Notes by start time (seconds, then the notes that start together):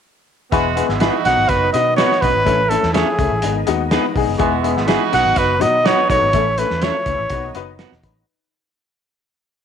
0.51 E1 E3 G#3 B3 E4 F#4 G#4 B4, kick, closed hi-hat
0.76 B3 E4 G#4 B4, closed hi-hat
0.88 G#1 G#3 B3 E4, snare
1.00 B3 D#4 E4 F#4 G#4 B4, snare, closed hi-hat
1.25 B1 D#3 F#3 B3 D#4 F#4 B4 F#5, snare, closed hi-hat
1.38 G#1
1.49 B4, kick, closed hi-hat
1.73 B2 B3 D#4 F#4 B4 D#5, closed hi-hat
1.96 B3 D#4 F#4 B4 C#5, snare, closed hi-hat
2.11 snare
2.21 B1 B3 D#4 F#4 B4, kick, closed hi-hat
2.35 G#1
2.44 A1 E3 A3 C#4 E4 A4, kick, closed hi-hat
2.69 A3 C#4 E4 A4, closed hi-hat
2.83 E2, snare
2.93 A3 C#4 E4 G#4 A4 C#5, snare, closed hi-hat
3.18 C#2 A3 C#4 E4 A4, kick, closed hi-hat
3.32 A1
3.42 G#1 D#3 G#3 B3 D#4 G#4, closed hi-hat
3.67 D#2 G#3 B3 D#4 F#4, closed hi-hat
3.91 G#3 B3 D#4 G#4 B4, snare, closed hi-hat
4.16 B1 G#3 B3 D#4 G#4, kick, open hi-hat
4.28 F#1
4.38 E1 E3 G#3 B3 E4 F#4 G#4, kick, closed hi-hat
4.63 G#3 B3 E4 G#4, closed hi-hat
4.75 G#1 G#3 B3 E4, snare
4.87 G#3 B3 D#4 E4 F#4 G#4 B4, snare, closed hi-hat
5.11 B1 D#3 F#3 B3 D#4 F#4 F#5, snare, closed hi-hat
5.25 G#1
5.36 F#1 B4, kick, closed hi-hat
5.60 B2 F#3 B3 D#4 F#4 D#5, closed hi-hat
5.84 F#3 B3 D#4 F#4 B4 C#5, snare, closed hi-hat
6.10 B1 F#3 B3 D#4 A4 C#5, kick, closed hi-hat
6.22 G#1
6.32 A1 E3 A3 C#4 E4 A4, kick, closed hi-hat
6.58 A3 C#4 E4 A4 B4, closed hi-hat
6.70 E2, snare
6.82 A3 C#4 E4 A4 C#5, snare, closed hi-hat
7.06 C#2 A3 C#4 E4 B4, kick, closed hi-hat
7.19 A1
7.30 B1 D#3 F#3 B3 D#4 F#4 B4, kick, closed hi-hat
7.55 F#1 B3 D#4 F#4 B4, closed hi-hat
7.79 B3 D#4 F#4 B4 D#5, snare, closed hi-hat
7.92 E1, snare
8.03 A1 D#4 B4, kick, closed hi-hat